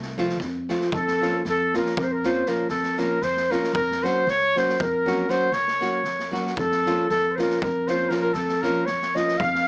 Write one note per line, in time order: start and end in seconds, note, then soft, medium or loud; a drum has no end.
0.00 0.40 C2 medium
0.00 0.36 A3 loud
0.00 0.36 A3 medium
0.00 snare soft
0.17 0.37 F3 medium
0.17 0.37 A3 medium
0.17 0.38 C4 medium
0.17 0.38 F4 medium
0.17 snare soft
0.29 snare soft
0.40 0.72 F2 medium
0.40 kick medium
0.40 snare soft
0.69 0.89 F3 medium
0.69 0.89 A3 medium
0.69 0.90 C4 medium
0.69 0.90 F4 medium
0.69 snare soft
0.81 snare soft
0.92 1.24 F2 medium
0.92 1.42 A4 medium
0.92 1.43 A4 medium
0.92 kick medium
1.07 snare soft
1.21 1.41 F3 medium
1.21 1.42 A#3 medium
1.21 1.42 C#4 medium
1.21 1.42 F4 medium
1.21 snare soft
1.45 1.76 F2 medium
1.45 1.79 A4 medium
1.45 snare soft
1.49 1.77 A4 loud
1.74 1.94 F3 medium
1.74 1.94 A#3 medium
1.74 1.94 C#4 medium
1.74 1.95 F4 medium
1.74 1.98 A#4 medium
1.74 1.99 A#4 medium
1.74 snare soft
1.86 snare soft
1.97 2.41 F2 medium
1.97 2.05 A#4 medium
1.97 2.06 A#4 medium
1.97 kick loud
2.03 2.13 C5 medium
2.03 2.14 C5 medium
2.11 2.27 A#4 medium
2.11 2.28 A#4 medium
2.23 2.43 F3 medium
2.23 2.44 A#3 medium
2.23 2.44 C#4 medium
2.23 2.44 F4 medium
2.23 2.49 C5 medium
2.23 2.51 C5 medium
2.23 snare soft
2.46 2.66 F3 medium
2.46 2.66 A#3 medium
2.46 2.67 C#4 medium
2.46 2.67 F4 medium
2.46 2.70 A#4 medium
2.46 snare soft
2.69 3.01 F2 medium
2.69 3.00 A4 medium
2.69 snare soft
2.83 snare soft
2.98 3.18 F3 medium
2.98 3.18 A#3 medium
2.98 3.19 C#4 medium
2.98 3.19 F4 medium
2.98 3.25 A#4 medium
2.98 3.24 A#4 medium
2.98 snare soft
3.21 3.53 F2 medium
3.21 3.52 C5 medium
3.21 snare soft
3.37 snare soft
3.50 3.71 F3 medium
3.50 3.71 A#3 medium
3.50 3.71 C#4 medium
3.50 3.72 F4 medium
3.50 3.75 A#4 medium
3.50 3.74 A#4 medium
3.50 snare soft
3.63 snare soft
3.73 4.05 F2 loud
3.73 4.05 A#4 medium
3.73 4.07 A#4 loud
3.73 kick loud
3.91 snare soft
4.03 4.24 F#3 medium
4.03 4.24 A#3 medium
4.03 4.24 C#4 medium
4.03 4.25 F#4 medium
4.03 4.31 C5 medium
4.03 4.31 C5 loud
4.03 snare soft
4.27 4.59 C#2 medium
4.27 4.59 C#5 medium
4.27 4.59 C#5 loud
4.27 snare soft
4.56 4.76 F#3 medium
4.56 4.77 A#3 medium
4.56 4.77 C#4 medium
4.56 4.77 F#4 medium
4.56 4.80 C5 medium
4.56 4.81 C5 loud
4.56 snare soft
4.69 snare soft
4.80 5.24 F2 medium
4.80 5.31 A#4 medium
4.80 5.32 A#4 loud
4.80 kick loud
5.06 5.26 F#3 medium
5.06 5.26 A#3 medium
5.06 5.26 C#4 medium
5.06 5.27 F#4 medium
5.06 snare soft
5.29 5.49 F#3 medium
5.29 5.49 A#3 medium
5.29 5.49 C#4 medium
5.29 5.49 F#4 medium
5.29 5.54 C5 medium
5.29 5.55 C5 medium
5.29 snare soft
5.52 5.84 C#2 medium
5.52 6.34 C#5 medium
5.52 6.35 C#5 medium
5.52 snare soft
5.67 snare soft
5.81 6.01 F#3 medium
5.81 6.01 A#3 medium
5.81 6.01 C#4 medium
5.81 6.02 F#4 medium
5.81 snare soft
6.04 6.36 F2 medium
6.04 snare soft
6.19 snare soft
6.31 6.53 F#3 medium
6.31 6.53 A#3 medium
6.31 6.53 C#4 medium
6.31 6.54 F#4 medium
6.31 snare soft
6.47 snare soft
6.57 6.89 F2 medium
6.57 7.07 A4 medium
6.57 7.08 A4 medium
6.57 kick medium
6.71 snare soft
6.86 7.06 F3 medium
6.86 7.07 A#3 medium
6.86 7.07 C#4 medium
6.86 7.07 F4 medium
6.86 snare soft
7.09 7.42 F2 medium
7.09 7.33 A4 medium
7.09 7.37 A4 loud
7.09 snare soft
7.32 7.40 C5 soft
7.32 7.41 C5 medium
7.38 7.58 F3 medium
7.38 7.59 A#3 medium
7.38 7.59 C#4 medium
7.38 7.59 F4 medium
7.38 7.62 A#4 medium
7.38 7.63 A#4 medium
7.38 snare soft
7.50 snare soft
7.62 8.06 F2 medium
7.62 7.89 A#4 medium
7.62 7.91 A#4 medium
7.62 kick medium
7.87 8.08 F3 medium
7.87 8.08 A#3 medium
7.87 8.09 C#4 medium
7.87 8.09 F4 medium
7.87 8.10 C5 medium
7.87 8.12 C5 medium
7.87 snare soft
8.09 8.31 F3 medium
8.09 8.31 A#3 medium
8.09 8.32 C#4 medium
8.09 8.31 F4 medium
8.09 8.16 A#4 medium
8.09 8.17 A#4 medium
8.09 snare soft
8.17 8.20 A#4 medium
8.17 8.23 A#4 medium
8.21 8.35 A#4 medium
8.21 8.36 A#4 medium
8.33 8.66 F2 medium
8.33 8.64 A4 medium
8.33 8.66 A4 medium
8.33 snare soft
8.48 snare soft
8.62 8.83 F3 medium
8.62 8.84 A#3 medium
8.62 8.84 C#4 medium
8.62 8.85 F4 medium
8.62 8.88 A#4 medium
8.62 8.87 A#4 medium
8.62 snare soft
8.85 9.19 F2 medium
8.85 9.16 C#5 medium
8.85 9.19 C#5 medium
8.85 snare soft
9.02 snare soft
9.15 9.36 F3 medium
9.15 9.36 A#3 medium
9.15 9.36 C#4 medium
9.15 9.37 F4 medium
9.15 9.42 D#5 medium
9.15 9.39 D#5 medium
9.15 snare soft
9.28 snare soft
9.38 9.68 F2 loud
9.38 9.68 F5 loud
9.38 kick medium
9.55 snare soft